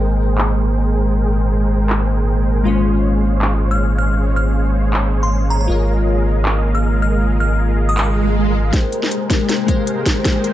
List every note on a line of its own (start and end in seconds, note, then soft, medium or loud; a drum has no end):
0.00 2.64 G#1 medium
0.00 5.66 A#2 medium
0.00 2.62 G#3 medium
0.00 2.64 G#3 medium
0.00 5.66 G#3 medium
0.00 5.66 A#3 medium
0.00 2.64 G#4 medium
0.00 2.64 A#4 medium
0.00 2.64 C5 medium
0.00 2.65 C5 medium
0.00 2.63 G5 medium
0.00 2.64 G5 medium
0.38 clap medium
1.90 clap medium
2.64 5.68 G#1 medium
2.64 5.66 G#3 medium
2.64 5.67 G#3 medium
2.64 5.67 C#4 medium
2.64 5.68 C#4 medium
2.64 5.66 F4 medium
2.64 5.67 G#4 medium
2.64 5.67 C5 medium
2.64 5.67 C#5 medium
2.64 5.67 F5 medium
2.64 5.68 C6 medium
3.42 clap medium
3.71 3.85 F6 medium
3.98 4.14 F6 medium
4.36 4.52 F6 medium
4.93 clap medium
5.23 5.37 C6 medium
5.50 5.57 A#5 medium
5.61 5.66 A#5 medium
5.68 8.72 G#1 medium
5.68 8.70 C#3 medium
5.68 8.71 G#3 medium
5.68 8.70 G#3 medium
5.68 8.70 A#3 medium
5.68 8.70 F4 medium
5.68 8.71 G#4 medium
5.68 8.71 A#4 medium
5.68 8.72 C#5 medium
5.68 8.71 D#5 medium
5.68 8.71 F5 medium
6.45 clap medium
6.75 6.89 F6 medium
7.02 7.18 F6 medium
7.40 7.56 F6 medium
7.89 7.94 D#6 medium
7.97 8.04 D#6 medium
7.97 clap medium
7.97 swell medium
8.71 10.53 C3 medium
8.71 9.27 G#3 medium
8.71 9.00 G#3 medium
8.71 10.53 G#3 medium
8.71 10.53 A#3 medium
8.71 9.28 G4 medium
8.71 9.00 G#4 medium
8.71 9.00 A#4 medium
8.71 9.29 A#4 medium
8.71 9.00 C5 medium
8.71 9.29 C5 medium
8.71 9.00 G5 medium
8.71 10.53 G5 medium
8.71 kick loud
8.71 snare soft
8.71 closed hi-hat medium
8.71 riser medium
8.92 closed hi-hat medium
9.03 9.38 G#3 medium
9.03 9.38 G#4 medium
9.03 9.38 A#4 medium
9.03 9.38 C5 medium
9.03 9.38 A#5 medium
9.03 snare soft
9.11 closed hi-hat medium
9.29 9.65 G#3 medium
9.29 9.66 G4 medium
9.29 9.66 A#4 medium
9.29 9.67 C5 medium
9.29 kick loud
9.29 snare medium
9.29 closed hi-hat medium
9.41 9.66 G#3 medium
9.41 9.66 G#4 medium
9.41 9.66 A#4 medium
9.41 9.66 C5 medium
9.41 9.66 G#5 medium
9.49 snare soft
9.49 closed hi-hat medium
9.66 10.22 G#3 medium
9.66 9.95 G#3 medium
9.66 10.23 G4 medium
9.66 9.95 G#4 medium
9.66 9.95 A#4 medium
9.66 10.24 A#4 medium
9.66 9.95 C5 medium
9.66 9.95 F5 medium
9.66 kick loud
9.66 closed hi-hat medium
9.70 10.24 C5 medium
9.87 closed hi-hat medium
9.98 10.23 G#3 medium
9.98 10.23 G#4 medium
9.98 10.23 A#4 medium
9.98 10.23 C5 medium
9.98 10.23 G5 medium
10.06 kick medium
10.06 snare medium
10.06 closed hi-hat medium
10.23 10.53 G#3 medium
10.23 10.52 G#3 medium
10.23 10.53 G4 medium
10.23 10.52 G#4 medium
10.23 10.52 A#4 medium
10.23 10.53 A#4 medium
10.23 10.52 C5 medium
10.23 10.53 C5 medium
10.23 10.52 G5 loud
10.23 kick loud
10.23 snare medium
10.23 closed hi-hat medium
10.44 closed hi-hat medium